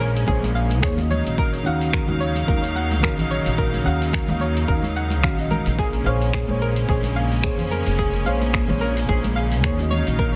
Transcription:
Already playing: upright bass A#1, string section C#3 G#3 A#3 C#4, fm electric piano A#3 G#4 C5 C#5
0.00 synth arpeggio sound A#4, muted conga, shaker
0.17 open hi-hat, shaker
0.26 upright bass A#1, fm electric piano A#3 G#4 C5 C#5, synth arpeggio sound G#4, kick, muted conga, shaker
0.43 open hi-hat, high conga
0.55 synth arpeggio sound F5, shaker
0.70 open hi-hat, muted conga, shaker
0.80 upright bass D#2, fm electric piano A#3 G#4 C5 C#5, synth arpeggio sound G#4, finger snap, kick, shaker
0.94 fm electric piano D#3 C#4, muted conga
0.99 fm electric piano F#4 D#5, open hi-hat
1.10 string section C#3 F#3 D#4 F5, synth arpeggio sound C#5, high conga, low conga, shaker
1.26 upright bass A#1, open hi-hat, shaker
1.37 synth arpeggio sound A#4, kick, muted conga, shaker
1.54 open hi-hat
1.63 upright bass D#2, fm electric piano D#3 C#4 F#4, synth arpeggio sound F#5, muted conga, shaker
1.67 fm electric piano F5
1.81 open hi-hat, shaker
1.93 synth arpeggio sound A#4, finger snap, kick, shaker
2.05 upright bass D#2, fm electric piano D#3 C#4 F#4 F5, muted conga, high conga
2.20 synth arpeggio sound C#5, shaker
2.35 open hi-hat, muted conga, shaker
2.46 upright bass D#2, fm electric piano D#3 C#4 F#4 F5, synth arpeggio sound A#4, kick, high conga, shaker
2.64 open hi-hat
2.75 synth arpeggio sound F#5, muted conga, shaker
2.91 open hi-hat, high conga, shaker
3.00 upright bass A#1, fm electric piano D#3 C#4 F#4 F5, synth arpeggio sound A#4, kick, muted conga
3.04 finger snap, shaker
3.13 fm electric piano D#3 C#4
3.18 fm electric piano F#4 D#5, open hi-hat, low conga
3.31 synth arpeggio sound C#5, shaker
3.46 upright bass A#1, open hi-hat, muted conga, shaker
3.58 synth arpeggio sound A#4, kick, shaker
3.74 open hi-hat, muted conga
3.83 upright bass D#2, fm electric piano D#3 C#4 F#4, synth arpeggio sound F#5, shaker
3.87 fm electric piano F5
4.02 open hi-hat, shaker
4.13 synth arpeggio sound A#4, finger snap, kick, muted conga, shaker
4.26 upright bass D#2, fm electric piano D#3 C#4 F#4, open hi-hat, high conga, low conga
4.31 fm electric piano F5
4.40 synth arpeggio sound C#5, muted conga, shaker
4.57 open hi-hat, shaker
4.67 upright bass D#2, fm electric piano D#3 C#4 F#4 F5, synth arpeggio sound A#4, kick, shaker
4.82 open hi-hat, muted conga, high conga
4.96 synth arpeggio sound F#5, shaker
5.10 open hi-hat, muted conga, shaker
5.21 upright bass A#1, fm electric piano D#3 C#4 F#4, synth arpeggio sound F5, finger snap, kick, shaker
5.26 fm electric piano F5
5.37 fm electric piano D#3 C#4 F#4 D#5, open hi-hat
5.51 synth arpeggio sound A#4, muted conga, high conga, low conga, shaker
5.66 upright bass A#1, open hi-hat, shaker
5.78 string section C#3 G#3 A#3 C#4, synth arpeggio sound G#4, kick, shaker
5.93 open hi-hat
6.04 upright bass A#1, fm electric piano A#3 G#4 C5, synth arpeggio sound F5, muted conga, shaker
6.08 fm electric piano C#5
6.22 open hi-hat, shaker
6.33 synth arpeggio sound G#4, finger snap, kick, muted conga, shaker
6.47 upright bass A#1, fm electric piano A#3 G#4 C5 C#5, high conga
6.62 synth arpeggio sound A#4, shaker
6.76 open hi-hat, muted conga, shaker
6.87 upright bass A#1, fm electric piano A#3 G#4 C5, synth arpeggio sound G#4, kick, high conga, shaker
6.91 fm electric piano C#5
7.03 open hi-hat, muted conga
7.16 synth arpeggio sound F5, shaker
7.31 open hi-hat, high conga, shaker
7.42 upright bass F2, fm electric piano A#3 G#4 C5, synth arpeggio sound G#4, finger snap, kick, muted conga, shaker
7.46 fm electric piano C#5
7.55 fm electric piano A#3 G#4, low conga
7.59 fm electric piano C5, open hi-hat
7.63 fm electric piano C#5
7.71 synth arpeggio sound A#4, muted conga, shaker
7.86 upright bass F1, open hi-hat, shaker
7.98 synth arpeggio sound G#4, kick, shaker
8.14 open hi-hat, muted conga
8.25 upright bass A#1, fm electric piano A#3 G#4 C5, synth arpeggio sound F5, shaker
8.29 fm electric piano C#5
8.42 open hi-hat, muted conga, shaker
8.53 synth arpeggio sound G#4, finger snap, kick, shaker
8.66 upright bass A#1, fm electric piano A#3 G#4 C5, high conga, low conga
8.71 fm electric piano C#5
8.81 synth arpeggio sound A#4, muted conga, shaker
8.97 open hi-hat, shaker
9.06 upright bass A#1, fm electric piano A#3 G#4 C5, synth arpeggio sound G#4, kick, muted conga, shaker
9.10 fm electric piano C#5
9.24 open hi-hat, high conga
9.36 synth arpeggio sound F5, shaker
9.52 open hi-hat, muted conga, shaker
9.61 upright bass D#2, fm electric piano A#3 G#4 C5, synth arpeggio sound G#4, finger snap, kick, shaker
9.66 fm electric piano C#5
9.75 fm electric piano D#3 C#4
9.79 fm electric piano F#4 D#5, open hi-hat, muted conga
9.90 string section C#3 F#3 D#4 F5, synth arpeggio sound C#5, high conga, low conga, shaker
10.07 upright bass A#1, open hi-hat, shaker
10.19 synth arpeggio sound A#4, kick, muted conga, shaker

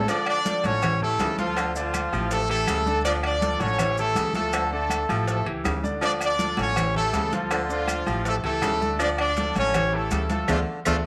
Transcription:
0.08 grand piano D3 D4 D5, baritone saxophone F3, horn section D4 D5, cowbell, high conga, low agogo, maracas
0.26 horn section D4 D5, cowbell, high conga, low agogo, claves
0.45 grand piano F3 F4 A4, cowbell, high conga, maracas
0.64 upright bass A1, baritone saxophone D3, horn section C#4 C#5, high conga, low agogo, maracas
0.82 grand piano E3 E4 G4, cowbell, high conga, low conga, low agogo, claves, maracas
1.02 grand piano E3 E4 G4, horn section A3 A4, high conga, low conga
1.19 upright bass D2, baritone saxophone C#3, cowbell, high conga, low timbale, low agogo, maracas
1.38 grand piano F3 F4 A4, horn section F3 F4, cowbell, high conga, maracas
1.57 baritone saxophone D3, cowbell, high conga, low agogo, claves, maracas
1.75 grand piano D3 D4 D5, horn section F3 F4, high conga, maracas
1.94 cowbell, high conga, low agogo, claves, maracas
2.12 upright bass A1, grand piano F3 E4 G4, baritone saxophone F3, low agogo, maracas
2.31 horn section A3 A4, cowbell, high conga, maracas
2.49 grand piano E3 E4 G4, horn section A3 A4, high conga, low agogo
2.67 upright bass D2, baritone saxophone C#3, cowbell, high conga, low agogo, claves, maracas
2.86 grand piano D3 D4 D5, high conga, maracas
3.05 grand piano D3 D4 D5, baritone saxophone F3, horn section D4 D5, cowbell, high conga, low agogo, maracas
3.23 horn section D5, cowbell, high conga, low agogo, claves
3.27 horn section D4
3.41 grand piano F3 F4 A4, cowbell, high conga, maracas
3.60 upright bass A1, baritone saxophone D3, horn section C#4 C#5, high conga, low agogo, maracas
3.79 grand piano E3 E4 G4, cowbell, high conga, low conga, low agogo, claves, maracas
3.97 grand piano E3 E4 G4, horn section A3 A4, high conga, maracas
4.15 upright bass D2, baritone saxophone C#3, cowbell, high conga, low agogo, maracas
4.34 grand piano F3 F4 A4, horn section A3 A4, cowbell, high conga, maracas
4.53 baritone saxophone D3, cowbell, high conga, low agogo, claves, maracas
4.71 grand piano D3 D4 D5, horn section A3 A4, high conga
4.90 cowbell, high conga, low agogo, claves, maracas
5.09 upright bass A1, grand piano F3 E4 G4, baritone saxophone F3, high conga, low agogo, maracas
5.27 horn section A3 A4, cowbell, high conga, maracas
5.45 upright bass C#2, grand piano E3 E4 G4, high conga, low agogo
5.64 upright bass D2, baritone saxophone C#3, cowbell, high conga, low timbale, low agogo, claves, maracas
5.83 grand piano D3 D4 D5, high conga, maracas
6.01 grand piano D3 D4 D5, baritone saxophone F3, horn section D4 D5, cowbell, high conga, low agogo, maracas
6.21 horn section D4 D5, cowbell, high conga, low agogo, claves, maracas
6.39 grand piano F3 F4 A4, cowbell, high conga, maracas
6.57 upright bass A1, baritone saxophone D3, horn section C#4 C#5, high conga, low agogo, maracas
6.76 grand piano E3 E4 G4, cowbell, high conga, low conga, low agogo, claves, maracas
6.95 grand piano E3 E4 G4, horn section A3 A4, high conga, low conga
7.13 upright bass D2, baritone saxophone C#3, cowbell, high conga, low agogo, maracas
7.32 grand piano F3 F4 A4, horn section F3 F4, cowbell, high conga, maracas
7.51 baritone saxophone D3, cowbell, high conga, low agogo, claves, maracas
7.69 grand piano D3 D4 D5, horn section F3 F4, high conga, maracas
7.88 cowbell, high conga, low agogo, claves, maracas
8.06 upright bass A1, baritone saxophone F3, grand piano F3 E4 G4, high conga, low agogo, maracas
8.25 horn section A3 A4, cowbell, high conga, maracas
8.44 upright bass C#2, grand piano E3 E4 G4, horn section A3 A4, high conga, low agogo
8.61 upright bass D2, baritone saxophone C#3, cowbell, high conga, low timbale, low agogo, claves, maracas
8.81 grand piano D3 D4 D5, high conga, maracas
8.99 grand piano D3 D4 D5, baritone saxophone F3, horn section D4 D5, cowbell, high conga, low agogo, maracas
9.18 horn section D4 D5, cowbell, high conga, low agogo, claves
9.37 grand piano F3 F4 A4, cowbell, high conga, maracas
9.56 upright bass A1, baritone saxophone D3, horn section C#4 C#5, high conga, low agogo, maracas
9.74 grand piano E3 E4 G4, cowbell, high conga, low conga, low agogo, claves, maracas
9.92 grand piano E3 E4 G4, horn section A3 A4, high conga
10.11 upright bass D2, baritone saxophone C#3, cowbell, high conga, low agogo, maracas
10.30 grand piano F3 F4 A4, horn section A3 A4, cowbell, high conga, maracas
10.48 upright bass D2, baritone saxophone D3, horn section F3 A3 D4 F4, grand piano A3 D4 F4, cowbell, low conga, high timbale, claves, maracas
10.85 upright bass D2, horn section F3 A3 D4 F4, grand piano A3 D4 F4, cowbell, low conga, high timbale, claves, maracas

